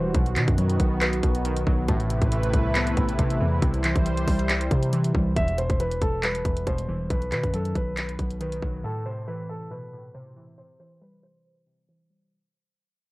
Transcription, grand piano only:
0.00 0.12 C5 medium
5.36 5.56 E5 medium
5.58 5.78 C5 medium
5.80 6.00 B4 medium
6.02 6.22 A4 medium
6.23 6.64 B4 medium
6.67 7.08 C5 medium
7.10 7.30 B4 medium
7.32 7.52 B4 medium
7.54 7.74 A4 medium
7.75 8.37 B4 medium
8.41 8.82 B4 medium
8.84 9.04 A4 medium
9.06 9.26 C5 medium
9.28 9.48 B4 medium
9.49 9.69 A4 medium
9.71 10.12 B4 medium
10.14 10.55 C5 medium
10.58 10.78 C5 medium
10.80 11.00 C5 medium
11.02 11.22 B4 medium
11.23 11.85 C5 medium
11.89 12.29 C5 medium

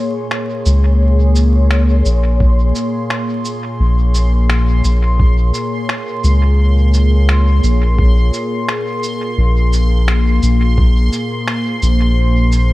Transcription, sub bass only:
0.66 2.03 C#2 medium
2.05 2.73 A#1 medium
3.80 4.82 A#1 loud
4.85 5.52 A#1 medium
6.24 7.61 C#2 medium
7.63 8.31 A#1 medium
9.38 10.40 A#1 medium
10.43 11.10 A#1 medium
11.82 12.73 A#1 medium

